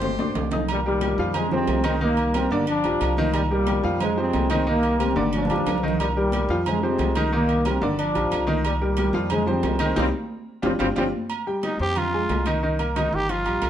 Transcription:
Already playing: G1 G4 C5
0.02 C4 C5 C6, high conga, low timbale
0.19 A#1 D4 D5 D6, high conga, low timbale
0.35 C2, low conga, low timbale
0.51 D#4 D#5 D#6, low conga, low timbale
0.68 A#2 D#3 G3, high conga, low agogo
0.84 A#2 D#3 G3 G4 A#4, high conga
1.01 G3 G4 A#4, high conga, low timbale, low agogo
1.18 F2 F3 F4 F5, high conga
1.34 C3 G#3 G#4 C5, high conga, low conga, low agogo
1.51 F3 G3 G#3 C4 G4 C5, high conga, low conga
1.67 C2, high conga, low timbale, low agogo
1.84 D#3 C4 D#4 D#5, high conga, low agogo
2.00 D#3 G3 A#3 D#4 D#5, high conga
2.17 high conga, low agogo
2.34 G3 C4 G4 A#4, high conga, low timbale, low agogo
2.51 G1 D3 A#3 D4 D5, high conga
2.67 F3 D4, high conga, low agogo
2.84 A#1 F3 F4 G4, high conga, low agogo
3.01 C2, high conga, low timbale, low agogo
3.17 D#3 D#4 D#5, high conga
3.34 A#2 D#3 G3, high conga, low agogo
3.50 A#2 D#3 G3 G4 A#4, high conga
3.67 G3 G4 A#4, high conga, low timbale, low agogo
3.84 F2 F3 F4 F5, high conga
4.00 C3 G#3 G#4 C5, high conga, low conga, low agogo
4.17 F3 G3 G#3 C4 G4 C5, high conga
4.33 C2, high conga, low timbale, low agogo
4.50 D#3 C4 D#4 D#5, high conga, low agogo
4.67 D#3 G3 A#3 D#4 D#5, high conga
4.83 low agogo
4.99 G3 C4 G4 A#4, high conga, low timbale, low agogo
5.11 high conga
5.16 G1 D3 A#3 D4 D5
5.22 high conga
5.33 F3 D4, high conga, low agogo
5.45 A#1, low conga
5.50 F3 F4 G4, low agogo
5.56 low conga
5.66 C2, low conga, low timbale, low agogo
5.78 low conga
5.83 D#3 D#4 D#5
5.88 low conga
5.99 A#2 D#3 G3, high conga, low agogo
6.16 A#2 D#3 G3 G4 A#4, high conga
6.32 G3 G4 A#4, high conga, low timbale, low agogo
6.49 F2 F3 F4 F5, high conga
6.66 C3 G#3 G#4 C5, high conga, low conga, low agogo
6.83 F3 G3 G#3 C4 G4 C5, high conga
6.98 C2, high conga, low timbale, low agogo
7.15 D#3 D#4 D#5, high conga, low agogo
7.32 D#3 G3 A#3 D#4 D#5, high conga
7.49 low agogo
7.65 G3 C4 G4 A#4, high conga, low timbale, low agogo
7.82 G1 D3 A#3 D4 D5, high conga
7.98 F3 D4, high conga, low agogo
8.15 A#1 F3 F4 G4, high conga, low agogo
8.31 C2, high conga, low timbale, low agogo
8.47 D#3 D#4 D#5, high conga
8.64 A#2 D#3 G3, high conga, low agogo
8.81 A#2 D#3 G3 G4 A#4, high conga
8.97 G3 G4 A#4, high conga, low timbale, low agogo
9.13 F2 F3 F4 F5, high conga
9.30 C3 G#3 G#4 C5, high conga, low conga, low agogo
9.46 F3 G3 G#3 C4 G4 C5, high conga, low conga
9.63 C2, high conga, low timbale, low agogo
9.79 D#3 C4 D#4 D#5, low agogo
9.96 C2 G3 A#3 C4 D#4 G4, high conga, high timbale
10.62 G1 F3 G3 C4 D4 F4 G4, high conga, high timbale
10.79 G1 F3 G3 C4 D4 F4 G4, high conga, high timbale
10.96 G1 F3 G3 C4 D4 F4 G4, high conga, high timbale
11.30 high conga, low agogo
11.46 G3 G4 G5, high conga
11.63 D#4, high conga, low timbale, low agogo
11.79 F2 C4 G4 C5 C6, high conga
11.96 F4, high conga, low conga, low agogo
12.14 G#3 G#4 G#5, high conga
12.29 C2, high conga, low timbale, low agogo
12.46 D#3 D#4 D#5, low agogo
12.63 D#3 D#4 D#5, high conga
12.79 A#3 A#4 A#5, high conga, low agogo
12.96 D#3 D#4 D#5, high conga, low timbale, low agogo
13.13 G1 G4, high conga
13.29 F3 F4 F5, low agogo
13.45 A#1 G3 G4 G5, high conga, low agogo
13.62 C2, high conga, low timbale, low agogo

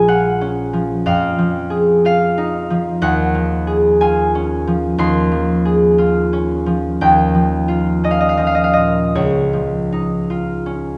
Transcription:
Already playing: A#1 F3 C#4 G#4 C5 C#5 G#5
0.08 F4 F#5
0.41 C#4
0.73 F3
1.06 F2 F5
1.38 F3
1.70 G#4
2.05 F4 F5
2.38 D#4
2.70 F3
3.02 D#2 F#5
3.35 F3
3.67 G#4
4.01 F4 G#5
4.35 C#4
4.67 F3
4.98 D#2 C6
5.32 F3
5.65 G#4
5.98 F4
6.33 C#4
6.66 F3
7.01 D#2 G5
7.35 F3
7.68 F4
8.04 C#4 D#5
8.11 F5
8.21 D#5
8.29 F5
8.38 F3 D#5
8.47 F5
8.55 D#5
8.64 F5
8.74 A#2 D#5
9.15 C#2 C#5
9.53 F3
9.92 D#4
10.30 F4
10.66 C#4

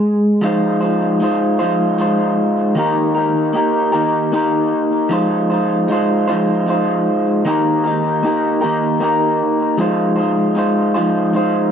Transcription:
Already playing: G#3
0.41 F3 G#3 D#4 F4
0.46 C5
0.81 D#4 F4 C5
1.20 G#3 D#4 F4 C5
1.59 F3 G#3 D#4 F4 C5
1.98 G#3 D#4 F4 C5
2.75 D#3 A#3 D#4 G4 A#4
3.15 D#4 G4 A#4
3.53 A#3 D#4 G4 A#4
3.92 D#3 A#3 D#4 G4 A#4
4.32 A#3 D#4 G4 A#4
5.09 F3 G#3 D#4 F4 C5
5.50 D#4 F4 C5
5.88 G#3 D#4 F4 C5
6.28 F3 G#3 D#4 F4 C5
6.67 G#3 D#4 F4 C5
7.45 D#3 A#3 D#4 G4 A#4
7.84 D#4 G4 A#4
8.23 A#3 D#4 G4 A#4
8.61 D#3 A#3 D#4 G4 A#4
9.00 A#3 D#4 G4 A#4
9.78 F3 G#3 D#4 F4 C5
10.16 D#4 F4 C5
10.55 G#3 D#4 F4 C5
10.94 F3 G#3 D#4 F4 C5
11.33 G#3 D#4 F4 C5

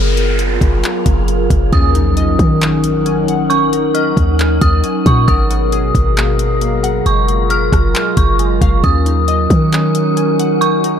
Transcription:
Already playing: F#1 F#3 A#3 F4 G#4 A#4 F5, noise sweep
0.17 closed hi-hat
0.39 closed hi-hat
0.61 F#1, kick, closed hi-hat
0.84 clap, closed hi-hat
1.06 F#1, kick, closed hi-hat
1.28 closed hi-hat
1.50 F#1, kick, closed hi-hat
1.72 D#2 F#3 C#4 D#4 A#4 C#5 F#5 D#6, kick, closed hi-hat, impact
1.95 D#4, closed hi-hat
2.17 D#5, closed hi-hat
2.39 D#3, kick, closed hi-hat
2.61 C#4, clap, closed hi-hat
2.84 closed hi-hat
3.06 C#4, closed hi-hat
3.28 F#5, closed hi-hat
3.50 C#4 D#5 C#6, closed hi-hat
3.73 D#4, closed hi-hat
3.94 D#5 F6, closed hi-hat
4.17 D#2, kick, closed hi-hat
4.39 C#4, clap, closed hi-hat
4.61 D#2 D#6, kick, closed hi-hat
4.84 C#4, closed hi-hat
5.06 A#2 F#5 C#6, kick, closed hi-hat
5.28 G#1 B2 B3 F#4 G#4 A#4 A#5 D#6, kick, closed hi-hat
5.50 B3, closed hi-hat
5.72 G#4, closed hi-hat
5.95 G#1, kick, closed hi-hat
6.17 A#3, clap, closed hi-hat
6.39 closed hi-hat
6.61 A#3, closed hi-hat
6.83 F#5, closed hi-hat
7.06 F#1 F#3 G#3 F4 G#4 F5 C#6, closed hi-hat
7.28 A#3, closed hi-hat
7.50 A#4 F6, closed hi-hat
7.72 F#1, kick, cross-stick, closed hi-hat
7.94 G#3, clap, closed hi-hat
8.17 F#1 C#6, kick, closed hi-hat
8.39 G#3, closed hi-hat
8.61 F#1 F5, kick, closed hi-hat
8.83 D#2 C#4 D#4 F#4 D#5 C#6 D#6, kick, closed hi-hat
9.06 D#4, closed hi-hat
9.28 D#5, closed hi-hat
9.50 D#3, kick, closed hi-hat
9.73 C#4, clap, closed hi-hat
9.95 closed hi-hat
10.17 C#4, closed hi-hat
10.39 F#5, closed hi-hat
10.61 C#4 C#6 D#6, closed hi-hat
10.84 D#4, closed hi-hat

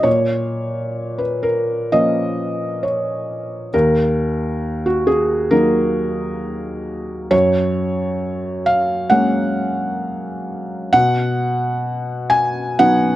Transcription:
0.03 A#2 C#5
1.18 B4
1.43 A#4
1.92 F3 A#3 C#4 D#5
2.83 C#5
3.74 D#2 A#4
4.86 F#4
5.07 G#4
5.51 F#3 A#3 D#4 A#4
7.31 F#2 C#5
8.66 F5
9.10 G#3 A#3 C#4 F#5
10.93 B2 F#5
12.30 G#5
12.79 F#3 B3 D#4 F#5

